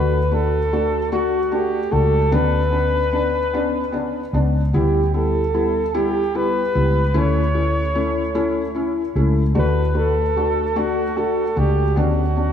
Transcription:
0.00 1.89 D2 loud
0.00 0.18 A3 medium
0.00 0.18 D4 medium
0.00 0.18 F#4 medium
0.00 0.35 B4 medium
0.31 0.58 A3 medium
0.31 0.58 D4 medium
0.31 0.58 F#4 medium
0.31 1.11 A4 loud
0.73 0.99 A3 medium
0.73 0.99 D4 medium
0.73 0.99 F#4 medium
1.12 1.38 A3 medium
1.12 1.38 D4 medium
1.12 1.55 F#4 medium
1.12 1.39 F#4 loud
1.52 1.78 A3 medium
1.52 1.78 D4 medium
1.52 1.78 F#4 medium
1.52 1.94 G4 medium
1.91 2.31 C#2 medium
1.91 2.18 A3 medium
1.91 2.18 D4 medium
1.91 2.18 F#4 medium
1.91 2.35 A4 medium
2.32 4.30 D2 loud
2.32 2.58 B3 medium
2.32 2.59 C#4 medium
2.32 2.59 D4 loud
2.32 4.34 B4 loud
2.71 2.98 B3 medium
2.71 2.98 C#4 medium
2.71 2.99 D4 medium
3.12 3.39 B3 medium
3.12 3.39 C#4 medium
3.12 3.39 D4 medium
3.53 3.79 B3 medium
3.53 3.80 C#4 medium
3.53 3.80 D4 medium
3.92 4.19 B3 medium
3.92 4.19 C#4 medium
3.92 4.20 D4 medium
4.33 4.71 C#2 medium
4.33 4.60 B3 medium
4.33 4.60 C#4 medium
4.33 4.60 D4 medium
4.73 6.71 D2 medium
4.73 5.00 G3 medium
4.73 5.00 B3 medium
4.73 5.00 E4 medium
4.73 5.12 G4 medium
5.14 5.40 G3 medium
5.14 5.40 B3 medium
5.14 5.40 E4 medium
5.14 5.96 A4 medium
5.53 5.80 G3 medium
5.53 5.80 B3 medium
5.53 5.80 E4 medium
5.94 6.20 G3 medium
5.94 6.21 B3 medium
5.94 6.20 E4 loud
5.94 6.37 G4 medium
6.34 6.60 G3 medium
6.34 6.60 B3 medium
6.34 6.61 E4 medium
6.34 7.20 B4 loud
6.74 7.13 C#2 medium
6.74 7.00 G3 medium
6.74 7.01 B3 medium
6.74 7.01 E4 medium
7.14 9.12 D2 loud
7.14 7.40 A3 medium
7.14 7.40 C#4 medium
7.14 7.40 E4 loud
7.18 8.77 C#5 medium
7.54 7.81 A3 medium
7.54 7.81 C#4 medium
7.54 7.81 E4 medium
7.95 8.21 A3 medium
7.95 8.21 C#4 medium
7.95 8.21 E4 medium
8.34 8.61 A3 medium
8.34 8.61 C#4 medium
8.34 8.61 E4 loud
8.75 9.01 C#4 medium
8.75 9.01 E4 medium
9.15 9.53 C#2 medium
9.15 9.42 A3 medium
9.15 9.42 C#4 medium
9.15 9.42 E4 medium
9.55 11.52 D2 loud
9.55 9.81 A3 medium
9.55 9.81 D4 medium
9.55 9.81 F#4 medium
9.55 9.99 B4 loud
9.94 10.21 A3 medium
9.94 10.21 D4 medium
9.94 10.21 F#4 medium
9.94 10.80 A4 loud
10.36 10.62 A3 medium
10.36 10.62 D4 medium
10.36 10.62 F#4 medium
10.76 11.02 A3 medium
10.76 11.02 D4 medium
10.76 11.02 F#4 medium
10.76 11.19 F#4 medium
11.16 11.42 A3 medium
11.16 11.42 D4 medium
11.16 11.43 F#4 medium
11.16 11.60 A4 medium
11.56 11.94 C#2 medium
11.56 11.82 A3 medium
11.56 11.82 D4 medium
11.56 11.82 F#4 medium
11.56 11.97 G4 medium
11.96 12.53 D2 loud
11.96 12.22 B3 medium
11.96 12.22 C#4 medium
11.96 12.23 D4 medium
11.96 12.53 F#4 medium
12.36 12.53 B3 medium
12.36 12.53 C#4 medium
12.36 12.53 D4 medium

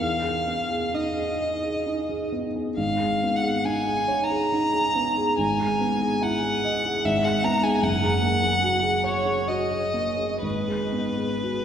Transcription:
0.01 2.73 E2 soft
0.01 0.96 F5 medium
0.23 0.60 G#4 soft
0.47 0.84 B3 soft
0.71 1.08 G#4 soft
0.94 1.31 D#4 soft
0.94 2.33 D#5 medium
1.17 1.54 G#4 soft
1.40 1.77 D#5 soft
1.63 2.00 G#4 soft
1.86 2.23 D#4 soft
2.09 2.46 G#4 soft
2.32 2.68 B3 soft
2.56 2.78 G#4 soft
2.77 5.34 G#1 soft
2.77 3.38 F5 medium
3.00 3.35 G#4 soft
3.23 3.57 B3 soft
3.36 3.67 F#5 medium
3.43 3.78 G#4 soft
3.65 3.99 D#4 soft
3.65 4.25 G#5 medium
3.87 4.21 G#4 soft
4.08 4.42 C#5 soft
4.24 5.38 A#5 medium
4.30 4.64 G#4 soft
4.52 4.86 D#4 soft
4.73 5.08 G#4 soft
4.95 5.30 B3 soft
5.17 5.38 G#4 soft
5.38 7.01 G#1 soft
5.38 6.24 G#5 medium
5.60 5.93 G#4 soft
5.80 6.13 B3 soft
6.01 6.34 G#4 soft
6.21 6.55 E4 soft
6.21 7.07 F#5 medium
6.43 6.76 G#4 soft
6.64 6.97 D#5 soft
6.85 7.05 G#4 soft
7.05 7.82 G#1 medium
7.05 7.26 E5 medium
7.24 7.56 G#4 soft
7.24 7.46 F#5 medium
7.44 7.76 B3 soft
7.44 7.65 A#5 medium
7.63 7.83 G#4 soft
7.63 7.85 G#5 medium
7.82 10.39 F#1 medium
7.82 9.06 F#5 medium
8.04 8.35 G#4 soft
8.22 8.55 A#3 soft
8.42 8.75 G#4 soft
8.63 8.96 F#4 soft
8.83 9.17 G#4 soft
9.04 9.39 C#5 soft
9.04 9.50 C#5 medium
9.25 9.61 G#4 soft
9.48 9.85 F#4 soft
9.48 10.43 D#5 medium
9.71 10.09 G#4 soft
9.94 10.33 A#3 soft
10.17 10.43 G#4 soft
10.42 11.65 G#1 soft
10.42 11.65 B4 medium
10.68 11.07 G#4 soft
10.92 11.32 B3 soft
11.18 11.57 G#4 soft
11.42 11.65 F#4 soft

